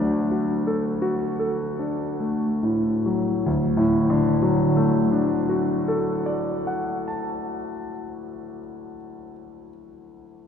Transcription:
0, 0, Header, 1, 2, 480
1, 0, Start_track
1, 0, Key_signature, 2, "major"
1, 0, Tempo, 1459854
1, 590, Tempo, 1671309
1, 1070, Time_signature, 6, 3, 24, 8
1, 1070, Tempo, 1583113
1, 2510, Tempo, 1634877
1, 3174, End_track
2, 0, Start_track
2, 0, Title_t, "Grand piano"
2, 0, Program_c, 0, 0
2, 0, Control_c, 0, 64, 127
2, 0, Note_on_c, 0, 38, 70
2, 0, Note_on_c, 0, 54, 52
2, 0, Note_on_c, 0, 57, 56
2, 0, Note_on_c, 0, 62, 57
2, 0, Note_on_c, 0, 74, 86
2, 60, Note_off_c, 0, 57, 0
2, 104, Note_on_c, 0, 66, 50
2, 172, Note_off_c, 0, 62, 0
2, 220, Note_on_c, 0, 69, 59
2, 289, Note_off_c, 0, 66, 0
2, 335, Note_on_c, 0, 66, 66
2, 412, Note_off_c, 0, 69, 0
2, 458, Note_on_c, 0, 69, 54
2, 537, Note_off_c, 0, 66, 0
2, 589, Note_on_c, 0, 62, 49
2, 659, Note_off_c, 0, 69, 0
2, 706, Note_on_c, 0, 57, 51
2, 781, Note_off_c, 0, 62, 0
2, 827, Note_off_c, 0, 74, 0
2, 830, Note_on_c, 0, 45, 55
2, 904, Note_off_c, 0, 57, 0
2, 953, Note_off_c, 0, 54, 0
2, 953, Note_on_c, 0, 54, 52
2, 1023, Note_off_c, 0, 45, 0
2, 1058, Note_off_c, 0, 38, 0
2, 1069, Note_on_c, 0, 38, 65
2, 1070, Note_off_c, 0, 54, 0
2, 1081, Control_c, 0, 64, 0
2, 1162, Note_on_c, 0, 45, 69
2, 1164, Control_c, 0, 64, 127
2, 1262, Note_on_c, 0, 50, 74
2, 1360, Note_on_c, 0, 54, 64
2, 1465, Note_on_c, 0, 57, 65
2, 1572, Note_on_c, 0, 62, 61
2, 1684, Note_on_c, 0, 66, 60
2, 1802, Note_on_c, 0, 69, 59
2, 1917, Note_on_c, 0, 74, 61
2, 2042, Note_on_c, 0, 78, 50
2, 2165, Note_on_c, 0, 81, 54
2, 2227, Note_off_c, 0, 38, 0
2, 2321, Note_off_c, 0, 45, 0
2, 2420, Note_off_c, 0, 50, 0
2, 2518, Note_off_c, 0, 54, 0
2, 2620, Note_off_c, 0, 57, 0
2, 2723, Note_off_c, 0, 62, 0
2, 2833, Note_off_c, 0, 66, 0
2, 2938, Note_off_c, 0, 74, 0
2, 2938, Note_off_c, 0, 81, 0
2, 2939, Note_off_c, 0, 78, 0
2, 2940, Note_off_c, 0, 69, 0
2, 3174, End_track
0, 0, End_of_file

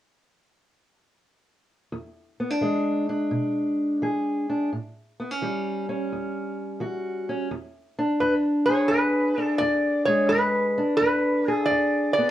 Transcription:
0, 0, Header, 1, 3, 480
1, 0, Start_track
1, 0, Tempo, 698487
1, 1316, Time_signature, 4, 2, 24, 8
1, 8456, End_track
2, 0, Start_track
2, 0, Title_t, "Resonator guitar played with a steel bar"
2, 0, Program_c, 0, 25
2, 5639, Note_on_c, 0, 71, 74
2, 5726, Note_off_c, 0, 71, 0
2, 5950, Note_on_c, 0, 73, 72
2, 6103, Note_on_c, 0, 71, 68
2, 6116, Note_off_c, 0, 73, 0
2, 6481, Note_off_c, 0, 71, 0
2, 6481, Note_on_c, 0, 69, 68
2, 6586, Note_on_c, 0, 74, 79
2, 6604, Note_off_c, 0, 69, 0
2, 6908, Note_off_c, 0, 74, 0
2, 6911, Note_on_c, 0, 73, 81
2, 7072, Note_on_c, 0, 71, 77
2, 7077, Note_off_c, 0, 73, 0
2, 7529, Note_off_c, 0, 71, 0
2, 7537, Note_on_c, 0, 71, 83
2, 7915, Note_off_c, 0, 71, 0
2, 7915, Note_on_c, 0, 69, 83
2, 8010, Note_on_c, 0, 74, 81
2, 8041, Note_off_c, 0, 69, 0
2, 8328, Note_off_c, 0, 74, 0
2, 8337, Note_on_c, 0, 74, 88
2, 8456, Note_off_c, 0, 74, 0
2, 8456, End_track
3, 0, Start_track
3, 0, Title_t, "Steel-string acoustic guitar"
3, 0, Program_c, 1, 25
3, 1320, Note_on_c, 1, 40, 66
3, 1648, Note_on_c, 1, 59, 51
3, 1720, Note_off_c, 1, 59, 0
3, 1720, Note_on_c, 1, 62, 38
3, 1766, Note_off_c, 1, 40, 0
3, 1793, Note_on_c, 1, 52, 56
3, 1801, Note_on_c, 1, 56, 52
3, 2116, Note_off_c, 1, 62, 0
3, 2124, Note_on_c, 1, 62, 55
3, 2243, Note_off_c, 1, 52, 0
3, 2275, Note_on_c, 1, 47, 53
3, 2724, Note_off_c, 1, 47, 0
3, 2764, Note_on_c, 1, 52, 55
3, 2770, Note_on_c, 1, 68, 46
3, 3080, Note_off_c, 1, 62, 0
3, 3089, Note_on_c, 1, 62, 47
3, 3209, Note_off_c, 1, 52, 0
3, 3219, Note_off_c, 1, 56, 0
3, 3222, Note_off_c, 1, 62, 0
3, 3224, Note_off_c, 1, 68, 0
3, 3245, Note_on_c, 1, 45, 56
3, 3569, Note_on_c, 1, 59, 53
3, 3647, Note_off_c, 1, 59, 0
3, 3647, Note_on_c, 1, 61, 43
3, 3689, Note_off_c, 1, 45, 0
3, 3722, Note_on_c, 1, 52, 50
3, 3726, Note_on_c, 1, 55, 49
3, 4039, Note_off_c, 1, 61, 0
3, 4047, Note_on_c, 1, 61, 48
3, 4168, Note_off_c, 1, 52, 0
3, 4208, Note_on_c, 1, 40, 52
3, 4651, Note_off_c, 1, 40, 0
3, 4674, Note_on_c, 1, 52, 55
3, 4680, Note_on_c, 1, 66, 53
3, 5004, Note_off_c, 1, 61, 0
3, 5011, Note_on_c, 1, 61, 49
3, 5124, Note_off_c, 1, 52, 0
3, 5139, Note_off_c, 1, 66, 0
3, 5143, Note_off_c, 1, 61, 0
3, 5162, Note_off_c, 1, 55, 0
3, 5163, Note_on_c, 1, 40, 70
3, 5489, Note_on_c, 1, 62, 54
3, 5608, Note_off_c, 1, 40, 0
3, 5639, Note_on_c, 1, 40, 68
3, 5969, Note_on_c, 1, 68, 60
3, 6086, Note_off_c, 1, 40, 0
3, 6122, Note_on_c, 1, 40, 69
3, 6441, Note_off_c, 1, 62, 0
3, 6444, Note_on_c, 1, 62, 52
3, 6568, Note_off_c, 1, 40, 0
3, 6601, Note_on_c, 1, 40, 75
3, 6925, Note_on_c, 1, 56, 57
3, 7047, Note_off_c, 1, 40, 0
3, 7082, Note_on_c, 1, 40, 60
3, 7102, Note_off_c, 1, 62, 0
3, 7406, Note_on_c, 1, 62, 54
3, 7427, Note_off_c, 1, 56, 0
3, 7427, Note_off_c, 1, 68, 0
3, 7528, Note_off_c, 1, 40, 0
3, 7565, Note_on_c, 1, 40, 68
3, 7890, Note_on_c, 1, 68, 65
3, 8009, Note_off_c, 1, 40, 0
3, 8042, Note_on_c, 1, 40, 68
3, 8369, Note_off_c, 1, 62, 0
3, 8371, Note_on_c, 1, 59, 56
3, 8445, Note_off_c, 1, 59, 0
3, 8456, Note_off_c, 1, 40, 0
3, 8456, Note_off_c, 1, 68, 0
3, 8456, End_track
0, 0, End_of_file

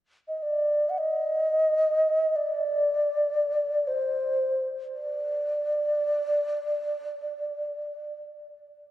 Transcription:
0, 0, Header, 1, 2, 480
1, 0, Start_track
1, 0, Tempo, 500000
1, 8553, End_track
2, 0, Start_track
2, 0, Title_t, "Xiao"
2, 0, Program_c, 0, 77
2, 267, Note_on_c, 0, 75, 46
2, 360, Note_off_c, 0, 75, 0
2, 360, Note_on_c, 0, 75, 57
2, 406, Note_on_c, 0, 74, 62
2, 416, Note_off_c, 0, 75, 0
2, 858, Note_on_c, 0, 78, 52
2, 873, Note_off_c, 0, 74, 0
2, 941, Note_on_c, 0, 75, 78
2, 956, Note_off_c, 0, 78, 0
2, 2265, Note_on_c, 0, 74, 71
2, 2280, Note_off_c, 0, 75, 0
2, 3720, Note_on_c, 0, 72, 69
2, 3734, Note_off_c, 0, 74, 0
2, 4492, Note_off_c, 0, 72, 0
2, 4756, Note_on_c, 0, 74, 68
2, 7864, Note_off_c, 0, 74, 0
2, 8553, End_track
0, 0, End_of_file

